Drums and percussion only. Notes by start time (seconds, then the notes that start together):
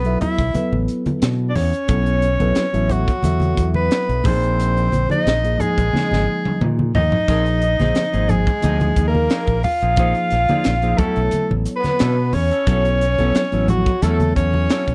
0.05 closed hi-hat
0.21 closed hi-hat, low conga
0.39 kick, closed hi-hat
0.55 closed hi-hat, high conga
0.73 high conga
0.88 closed hi-hat
1.06 closed hi-hat, high conga
1.22 snare, closed hi-hat
1.56 snare, open hi-hat, low conga
1.73 closed hi-hat
1.88 kick, closed hi-hat
2.06 closed hi-hat
2.22 closed hi-hat
2.40 closed hi-hat, high conga
2.55 snare, closed hi-hat
2.74 closed hi-hat
2.89 closed hi-hat, low conga
3.08 kick, closed hi-hat
3.23 closed hi-hat, high conga
3.40 closed hi-hat, high conga
3.57 kick, closed hi-hat
3.74 high conga
3.91 snare, closed hi-hat
4.09 closed hi-hat
4.24 kick, open hi-hat, low conga
4.43 closed hi-hat
4.60 closed hi-hat
4.77 closed hi-hat
4.92 closed hi-hat, high conga
5.10 closed hi-hat, high conga
5.27 snare, closed hi-hat
5.45 closed hi-hat
5.60 closed hi-hat, low conga
5.78 kick, closed hi-hat
5.93 snare, high conga
6.11 snare, high conga
6.45 high tom, high conga
6.61 mid tom, high conga
6.79 high conga
6.95 floor tom, low conga
7.12 floor tom, low conga
7.28 kick, closed hi-hat, splash
7.46 closed hi-hat
7.62 closed hi-hat
7.79 snare, closed hi-hat, high conga
7.95 snare, closed hi-hat
8.13 closed hi-hat
8.29 closed hi-hat, low conga
8.47 kick, closed hi-hat
8.62 closed hi-hat, high conga
8.80 closed hi-hat, high conga
8.96 kick, closed hi-hat
9.15 high conga
9.30 snare, closed hi-hat
9.47 kick, closed hi-hat
9.63 open hi-hat, low conga
9.81 closed hi-hat
9.96 kick, closed hi-hat
10.15 closed hi-hat
10.30 snare, closed hi-hat
10.48 closed hi-hat, high conga
10.64 snare, closed hi-hat
10.82 closed hi-hat
10.98 kick, closed hi-hat, low conga
11.16 closed hi-hat
11.31 closed hi-hat, high conga
11.51 high conga
11.65 closed hi-hat
11.84 snare, closed hi-hat, high conga
11.99 snare, closed hi-hat
12.33 open hi-hat, low conga
12.51 closed hi-hat
12.67 kick, closed hi-hat
12.85 closed hi-hat
13.01 closed hi-hat
13.19 closed hi-hat, high conga
13.35 snare, closed hi-hat
13.52 closed hi-hat
13.68 closed hi-hat, low conga
13.86 kick, closed hi-hat
14.02 closed hi-hat, high conga
14.20 closed hi-hat, high conga
14.36 kick, closed hi-hat
14.54 high conga
14.70 snare, closed hi-hat
14.87 kick, closed hi-hat